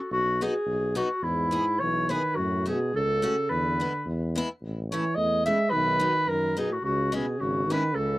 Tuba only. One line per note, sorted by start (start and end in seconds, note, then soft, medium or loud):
0.11 0.47 B1 medium
0.66 1.02 B1 medium
1.22 1.59 E2 medium
1.79 2.16 B1 medium
2.36 2.73 F#2 medium
2.93 3.30 C#2 medium
3.50 3.86 E2 medium
4.06 4.42 E2 loud
4.62 4.97 A1 medium
5.17 5.53 E2 medium
5.72 6.08 B1 medium
6.27 6.64 F#2 medium
6.83 7.20 C#2 medium
7.40 7.77 G#1 medium
7.96 8.19 C#2 medium